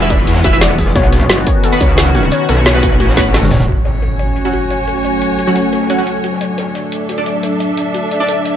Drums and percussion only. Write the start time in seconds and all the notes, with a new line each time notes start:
0.01 snare
0.10 kick, closed hi-hat
0.27 closed hi-hat, open hi-hat
0.36 snare
0.44 kick, closed hi-hat
0.53 cross-stick, closed hi-hat
0.61 snare, closed hi-hat
0.70 cross-stick
0.78 kick, closed hi-hat, open hi-hat
0.87 cross-stick, snare
0.95 kick, closed hi-hat
1.13 cross-stick, snare, closed hi-hat
1.20 kick, closed hi-hat
1.29 snare, closed hi-hat
1.38 closed hi-hat
1.47 kick, closed hi-hat
1.64 closed hi-hat
1.80 kick, closed hi-hat
1.97 snare, closed hi-hat
2.15 closed hi-hat, open hi-hat
2.32 closed hi-hat
2.49 cross-stick, closed hi-hat
2.66 snare, closed hi-hat
2.74 closed hi-hat
2.83 kick, closed hi-hat
3.00 closed hi-hat, open hi-hat
3.09 snare
3.17 kick, snare, closed hi-hat
3.25 closed hi-hat
3.34 snare, closed hi-hat
3.43 snare, closed hi-hat, mid tom
3.51 kick, snare, closed hi-hat, mid tom, open hi-hat
3.60 snare, closed hi-hat, mid tom
3.68 closed hi-hat
3.85 snare, closed hi-hat
3.94 closed hi-hat
4.02 closed hi-hat
4.10 closed hi-hat
4.19 closed hi-hat
4.36 closed hi-hat
4.53 closed hi-hat
4.71 closed hi-hat
4.88 closed hi-hat
5.05 closed hi-hat
5.22 closed hi-hat
5.39 closed hi-hat
5.47 snare
5.55 closed hi-hat
5.73 closed hi-hat, open hi-hat
5.82 snare
5.90 closed hi-hat
6.07 closed hi-hat
6.24 closed hi-hat
6.33 snare
6.41 closed hi-hat
6.58 snare, closed hi-hat
6.66 closed hi-hat
6.75 closed hi-hat
6.84 closed hi-hat
6.92 closed hi-hat
7.09 closed hi-hat
7.26 closed hi-hat
7.43 closed hi-hat
7.60 closed hi-hat
7.77 closed hi-hat
7.94 closed hi-hat
8.11 closed hi-hat
8.20 snare
8.29 closed hi-hat
8.45 closed hi-hat, open hi-hat